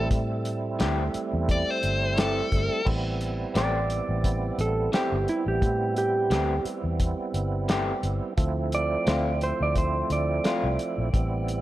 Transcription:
Already playing: G3 A3 C4 E4
0.11 A2, kick, closed hi-hat
0.45 closed hi-hat
0.79 D2 E3 A3 C4 G4, snare, closed hi-hat
1.14 muted fingered electric bass stroke, closed hi-hat
1.33 E2
1.49 D5, kick, closed hi-hat
1.70 C5
1.83 G1, closed hi-hat
2.17 E3 A3 C4 G4 A4, snare, closed hi-hat
2.52 G1, kick, closed hi-hat
2.85 A1 G3 B3 C4 E4, kick, crash
3.21 closed hi-hat
3.54 A1 E3 A3 C4 G4 D5, snare, closed hi-hat
3.90 closed hi-hat
4.09 A1
4.24 kick, closed hi-hat
4.58 A1 A4, closed hi-hat
4.92 E3 A3 C4 G4, snare, closed hi-hat
5.12 G1
5.28 E4, closed hi-hat
5.46 A1 G4
5.62 A2, kick, closed hi-hat
5.97 G4, closed hi-hat
6.30 D2 E3 A3 C4 G4, snare, closed hi-hat
6.65 muted fingered electric bass stroke, closed hi-hat
6.84 E2
7.00 kick, closed hi-hat
7.34 G1, closed hi-hat
7.68 E3 A3 C4 G4, snare, closed hi-hat
8.03 G1, closed hi-hat
8.37 D2 F3 A3 C4 E4, kick, closed hi-hat
8.72 D5, closed hi-hat
9.06 D2 A3 C4 F4, snare, closed hi-hat
9.41 C5, closed hi-hat
9.60 D2 D5
9.76 C5, kick, closed hi-hat
10.10 D2 D5, closed hi-hat
10.44 A3 C4 F4, snare, closed hi-hat
10.64 C2
10.79 closed hi-hat
10.98 A#1
11.13 A1 G3 B3 C4 E4, kick, closed hi-hat
11.48 closed hi-hat

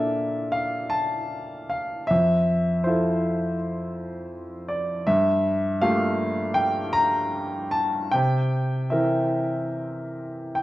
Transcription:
Already playing: A#2 A#3 D4 A4 D5 E5
0.52 F5
0.90 A5
1.70 F5
2.07 F2 E5
2.84 E4 F4 A4 C5
4.68 D5
5.07 G2 E5
5.82 A3 A#3 F4 G4 F5
6.54 G5
6.93 A#5
7.71 A5
8.11 C3 G5
8.90 E3 C4 A#4 E5
10.55 G5

